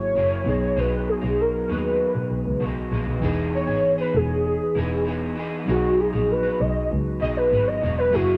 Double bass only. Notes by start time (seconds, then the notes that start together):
0.15 F#1
0.46 B1
0.77 B1
1.23 B1
1.69 D#2
2.15 B2
2.30 B1
2.45 C#2
2.60 B1
2.91 A#1
3.06 B1
3.22 E1
3.68 G#1
4.14 E1
4.75 E1
5.68 B1
6.14 A#1
6.60 B1
6.91 C#2
7.21 B1
7.52 G#1
7.83 E1
8.13 F#1